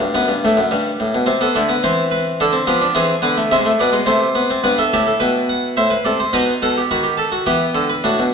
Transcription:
harpsichord
0.00 G2
0.14 F#2 B3
0.28 G2
0.45 A2 A3
0.57 F#2
0.71 G2 G3
1.00 A2
1.14 B2
1.26 C3 C4
1.41 B3 A4
1.55 D3 A3 D5
1.69 B3
1.83 E3 C4 C5
2.11 B4
2.40 D3 D4 A4
2.53 C4
2.67 F3 B3 G4
2.81 D4
2.95 E3 C4 G#4
3.22 D3 B3 B4
3.37 A3
3.51 C3 G#3 E5
3.65 A3
3.80 B2 B3 D5
3.92 G#3
4.06 C3 A3 C5
4.35 B3
4.50 C4
4.63 G2 B3 B4
4.78 A4 E5
4.93 A2 E4 G4 A5
5.07 A4
5.20 B2 B4 G5
5.49 F#5
5.77 A2 C5 E5
5.90 B4
6.05 C3 A4 D5
6.20 C5
6.33 B2 D#4 B4 D#5
6.62 B2 A4 F#5
6.77 G4
6.91 D#3 F#4 B5
7.03 G4
7.17 A4 A5
7.32 F#4
7.46 E3 B3 G4 G5
7.74 D3 A4
7.89 B4
8.04 A2 D4 F#4
8.19 B2

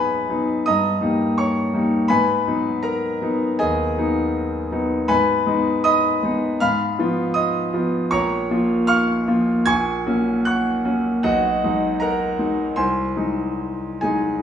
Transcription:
grand piano
Already playing: G#2 F#3 B3 D#4 G#4 B4 D#5 G#5 B5
0.30 F#3 B3 D#4
0.66 G2 D#5 A#5 D#6
1.01 G3 A#3 D#4
1.38 C#5 C#6
1.74 G3 A#3 D#4
2.08 G#2 B4 G#5 B5
2.47 F#3 B3 D#4
2.83 A#4 A#5
3.21 F#3 B3 D#4
3.59 D#2 G#4 D#5 G#5
3.98 F#3 B3 D#4
4.71 F#3 B3 D#4
5.08 G#2 B4 G#5 B5
5.47 G#3 B3 D#4
5.84 D#5 B5 D#6
6.23 G#3 B3 D#4
6.60 G#2 F5 B5 F6
6.99 F3 B3 F4
7.34 D#5 D#6
7.73 F3 B3 F4
8.11 A#1 C#5 A#5 C#6
8.51 F3 A#3 F4
8.87 F5 C#6 F6
9.28 F3 A#3 F4
9.66 A#1 G#5 C#6 G#6
10.06 F#3 A#3 C#4
10.45 F#5 C#6 F#6
10.85 F#3 A#3 C#4
11.23 B1 F#4 D#5 F#5
11.64 F#3 G#3 D#4
12.00 A#4 F#5 A#5
12.39 F#3 G#3 D#4
12.76 C2 C5 G#5 C6
13.16 F#3 G#3 D#4
14.01 F#3 G#3 D#4 G#4 G#5

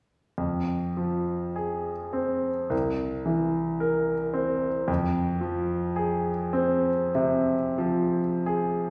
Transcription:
grand piano
0.38 F2
0.97 F3
1.56 G#4
2.13 C4
2.70 C2
3.26 E3
3.80 A#4
4.34 C4
4.88 F2
5.41 F3
5.96 G#4
6.53 C4
7.15 C3
7.78 F3
8.46 G#4

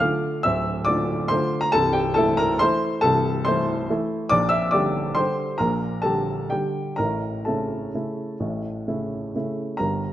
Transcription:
upright piano
0.00 D3 A3 F4 F5 F6
0.43 D1 D2 E5 E6
0.85 D3 A3 F4 D5 D6
1.28 D3 A3 F4 C5 C6
1.61 A#5
1.72 C1 C2 A4 A5
1.93 G4 G5
2.14 E3 A3 E4 A4 A5
2.37 A#4 A#5
2.59 E3 A3 E4 C5 C6
3.01 C1 C2 A4 A5
3.45 E3 A3 E4 C5 C6
3.90 E3 A3 E4
4.29 A#1 A#2 D5 D6
4.49 E5 E6
4.71 D3 G3 G4 D5 D6
5.15 D3 G3 G4 C5 C6
5.58 A#1 A#2 A#4 A#5
6.02 D3 G3 G4 A4 A5
6.50 D3 G3 G4 G5
6.96 A1 A2 A#4 A#5
7.45 C#3 A3 E4 A4 A5
7.95 C#3 A3 E4
8.40 A1 A2
8.88 C#3 A3 E4
9.36 C#3 A3 E4
9.77 G1 G2 A#4 A#5

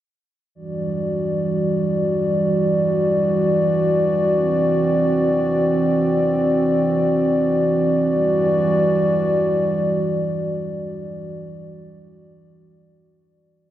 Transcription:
analog synth pad
0.55 E3 G3 F#4 D5
4.33 C4
8.11 E3 G3 F#4 D5

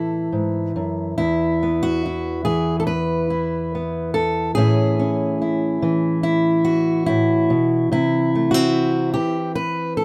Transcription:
steel-string acoustic guitar
Already playing: A2 E3 E4 A4
0.32 G#2
0.76 F#2
1.18 E2 E4
1.63 B3
1.83 F#4
2.06 E4
2.45 E3 G#4
2.80 A4
2.87 B4
3.30 E4
3.75 B3
4.14 A4
4.55 A2 E3 C#4 E4 G#4
4.99 C#4
5.42 E4
5.82 E3
6.23 E4
6.65 F#4
7.06 A2 E4
7.50 B2
7.92 C3 E4
8.35 A3
8.51 C4 F#4
9.14 E3 G4
9.55 B4
9.97 A4

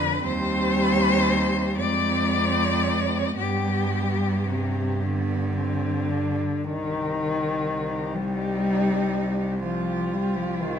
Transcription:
cello
Already playing: D3 D4 B4
0.21 D#2 G3 C4 C5
1.77 F2 G#3 C4 D5
3.38 G2 G3 B3 G4
4.48 C3
5.02 D3 B3
5.58 C4
6.11 D4
6.64 C2 D#3 D#4
6.89 G4
7.13 D#4
7.39 G4
7.64 D#4
7.90 G4
8.14 G3 D#4
8.39 G4
8.65 D#4
8.90 G4
9.15 D#4
9.38 G4
9.63 F3 F4
9.87 G4
10.12 G3 F4
10.35 F3 G4
10.60 D#3 F4

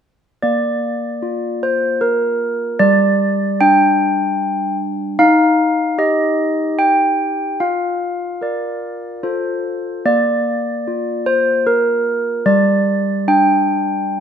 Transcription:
handbells
0.42 A#3 D5
1.22 F4
1.63 C5
2.01 A#4
2.79 G3 D5
3.61 D4 G5
5.19 D#4 F5
5.98 G4 D#5
6.79 G5
7.60 F4 F5
8.41 A#4 D5
9.23 F4 A4 C5
10.05 A#3 D5
10.88 F4
11.26 C5
11.67 A#4
12.46 G3 D5
13.28 D4 G5

